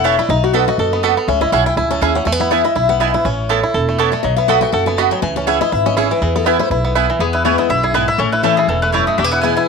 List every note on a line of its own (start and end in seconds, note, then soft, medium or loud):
0.00 0.16 E1 medium
0.00 0.14 B3 medium
0.00 0.18 E4 medium
0.00 0.16 A4 medium
0.04 0.30 C#4 medium
0.04 0.14 E4 loud
0.04 0.15 C#5 loud
0.04 0.18 E5 loud
0.04 0.15 A5 loud
0.19 0.29 E4 medium
0.19 0.29 D5 loud
0.29 0.65 B1 loud
0.29 0.65 D#4 medium
0.29 0.43 D#5 loud
0.44 0.54 F#4 medium
0.44 0.67 F#4 medium
0.53 0.64 B3 medium
0.53 0.64 F#4 loud
0.53 0.78 A4 medium
0.53 0.67 B4 loud
0.53 0.64 D#5 medium
0.53 0.64 B5 loud
0.68 1.02 F#4 medium
0.68 0.78 D#5 loud
0.78 1.14 F#1 medium
0.78 1.02 A4 medium
0.78 1.02 D#5 medium
0.93 1.16 B3 medium
1.03 1.13 B3 medium
1.03 1.13 F#4 medium
1.03 1.28 A4 medium
1.03 1.14 D#5 medium
1.03 1.14 B5 loud
1.17 1.28 B3 medium
1.28 1.46 C#2 loud
1.28 1.64 C#4 medium
1.28 1.41 E5 medium
1.41 1.52 E4 medium
1.41 1.52 D#5 loud
1.52 1.73 B1 medium
1.52 1.62 C#4 medium
1.52 1.66 E4 medium
1.52 1.63 G#4 medium
1.52 1.63 E5 medium
1.52 1.66 F#5 loud
1.52 1.63 G#5 loud
1.66 1.77 E4 medium
1.66 1.77 G5 loud
1.76 1.98 C#2 medium
1.76 2.02 E4 medium
1.76 1.90 G#5 loud
1.90 2.15 C#4 medium
1.90 2.01 A5 loud
2.01 2.23 D#2 medium
2.01 2.12 C#4 medium
2.01 2.27 E4 medium
2.01 2.12 G#4 loud
2.01 2.12 E5 loud
2.01 2.15 G#5 loud
2.01 2.12 G#5 loud
2.15 2.26 C#4 medium
2.15 2.25 F#5 loud
2.25 2.62 E2 loud
2.25 2.32 A3 medium
2.25 2.39 G#5 loud
2.32 2.51 B3 medium
2.40 2.51 E4 medium
2.40 2.51 F#5 loud
2.51 2.61 B3 medium
2.51 2.61 E4 medium
2.51 2.64 E4 medium
2.51 2.62 B4 loud
2.51 2.64 E5 medium
2.51 2.62 G#5 medium
2.64 2.75 E4 medium
2.64 2.75 D#5 loud
2.75 3.12 B1 medium
2.75 2.99 E4 medium
2.75 2.89 E5 medium
2.89 3.28 B3 medium
2.89 3.00 F#5 loud
3.00 3.10 B3 medium
3.00 3.11 E4 medium
3.00 3.13 E4 medium
3.00 3.11 B4 medium
3.00 3.14 D#5 medium
3.00 3.11 G#5 loud
3.14 3.25 E4 medium
3.14 3.25 B4 medium
3.25 3.61 A1 loud
3.25 3.61 C#4 medium
3.25 3.71 C#5 medium
3.49 3.60 B3 medium
3.49 3.60 E4 medium
3.49 3.73 A4 medium
3.49 3.60 C#5 loud
3.49 3.60 A5 loud
3.63 3.97 E4 medium
3.74 4.10 E1 medium
3.74 3.98 A4 medium
3.89 4.12 A3 medium
3.98 4.09 B3 medium
3.98 4.09 E4 medium
3.98 4.24 A4 medium
3.98 4.09 C#5 loud
3.98 4.09 A5 medium
4.12 4.24 A3 medium
4.12 4.22 D5 loud
4.23 4.60 B1 medium
4.23 4.60 F#3 medium
4.23 4.36 D#5 medium
4.36 4.71 B3 medium
4.36 4.48 E5 loud
4.48 4.58 B3 medium
4.48 4.59 F#4 loud
4.48 4.72 A4 medium
4.48 4.59 D#5 loud
4.48 4.60 F#5 loud
4.48 4.59 B5 loud
4.61 4.96 F#4 medium
4.61 4.72 G5 loud
4.72 5.09 F#1 medium
4.72 5.09 A4 medium
4.72 4.86 F#5 medium
4.86 5.21 B3 medium
4.86 4.97 G#5 loud
4.97 5.08 B3 medium
4.97 5.23 F#4 medium
4.97 5.08 F#4 loud
4.97 5.08 D#5 loud
4.97 5.11 A5 loud
4.97 5.08 B5 loud
5.11 5.22 F#3 medium
5.11 5.22 G5 loud
5.22 5.58 C#2 loud
5.22 6.11 E3 medium
5.22 5.36 G#5 loud
5.36 5.70 C#4 medium
5.36 5.47 A5 loud
5.47 5.57 C#4 medium
5.47 5.61 E4 medium
5.47 5.57 G#4 medium
5.47 5.57 E5 loud
5.47 5.60 F#5 loud
5.47 5.58 G#5 loud
5.61 5.72 E4 medium
5.61 5.72 D#5 loud
5.72 6.08 G#1 medium
5.72 5.96 E4 medium
5.72 5.86 E5 loud
5.86 6.19 C#4 medium
5.86 5.97 D#5 loud
5.97 6.07 C#4 medium
5.97 6.46 E4 medium
5.97 6.07 G#4 loud
5.97 6.10 C#5 loud
5.97 6.07 E5 loud
5.97 6.07 G#5 loud
6.11 6.22 E3 medium
6.11 6.22 B4 medium
6.22 6.57 E2 loud
6.22 6.57 E3 medium
6.22 6.35 G#4 medium
6.36 6.69 B3 medium
6.36 6.47 A4 loud
6.46 6.56 B3 loud
6.46 6.59 E4 medium
6.46 6.56 E4 loud
6.46 6.56 B4 loud
6.46 6.60 B4 medium
6.46 6.57 G#5 loud
6.59 6.70 E4 medium
6.59 6.70 C5 loud
6.70 7.06 B1 medium
6.70 6.94 E4 medium
6.70 7.12 B4 medium
6.85 7.18 B3 medium
6.95 7.05 B3 loud
6.95 7.20 E4 medium
6.95 7.06 E4 loud
6.95 7.06 B4 loud
6.95 7.06 G#5 loud
7.10 7.21 E3 medium
7.19 7.56 E2 medium
7.19 7.68 E2 medium
7.19 7.56 B3 medium
7.19 8.18 G#4 medium
7.33 7.45 E4 medium
7.33 7.44 B4 medium
7.45 7.68 E3 medium
7.45 7.69 G#3 medium
7.45 7.55 B3 medium
7.45 7.69 B3 loud
7.45 7.59 E4 medium
7.45 7.55 E4 medium
7.45 7.69 E4 medium
7.45 7.55 B4 medium
7.45 7.58 C#5 medium
7.45 7.56 G#5 medium
7.58 7.70 E4 medium
7.58 7.69 D#5 medium
7.69 8.05 B1 medium
7.69 7.94 F#2 medium
7.69 7.84 E4 medium
7.69 7.83 E5 loud
7.83 7.95 E4 medium
7.83 7.94 G#4 medium
7.94 8.18 G#2 medium
7.94 8.04 B3 medium
7.94 8.04 E4 medium
7.94 8.07 E4 medium
7.94 8.08 B4 medium
7.94 8.05 B4 loud
7.94 8.05 G#5 loud
8.08 8.19 E4 medium
8.08 8.19 E5 loud
8.18 8.55 A1 medium
8.18 8.67 A2 medium
8.18 8.43 C#4 medium
8.18 9.18 A4 medium
8.18 8.32 C#5 medium
8.32 8.58 E4 medium
8.32 8.43 B4 medium
8.43 8.67 E3 medium
8.43 8.54 A3 medium
8.43 8.68 A3 medium
8.43 8.68 C#4 medium
8.43 8.80 C#4 medium
8.43 8.54 E4 medium
8.43 8.68 E4 medium
8.43 8.57 A4 medium
8.43 8.54 C#5 loud
8.43 8.54 A5 medium
8.57 8.92 E4 medium
8.57 8.68 G#4 medium
8.68 9.04 E1 medium
8.68 8.92 G#2 medium
8.68 9.05 E3 medium
8.68 8.82 A4 medium
8.82 9.07 A3 medium
8.82 8.92 B4 loud
8.92 9.17 F#2 medium
8.92 9.03 A3 medium
8.92 9.04 E4 medium
8.92 9.19 E4 medium
8.92 9.06 C#5 medium
8.92 9.04 C#5 loud
8.92 9.04 A5 loud
9.07 9.18 A3 medium
9.07 9.18 D#5 medium
9.18 9.54 E1 medium
9.18 9.66 E2 medium
9.18 9.24 A3 medium
9.18 9.68 G#4 medium
9.18 9.31 E5 medium
9.24 9.42 B3 medium
9.31 9.56 E4 medium
9.31 9.41 F#5 medium
9.41 9.67 E3 medium
9.41 9.67 G#3 medium
9.41 9.53 B3 medium
9.41 9.68 B3 medium
9.41 9.67 B3 medium
9.41 9.53 E4 medium
9.41 9.67 E4 loud
9.41 9.54 B4 medium
9.41 9.55 G#5 medium
9.41 9.54 G#5 medium
9.57 9.68 E4 medium
9.57 9.68 G#5 medium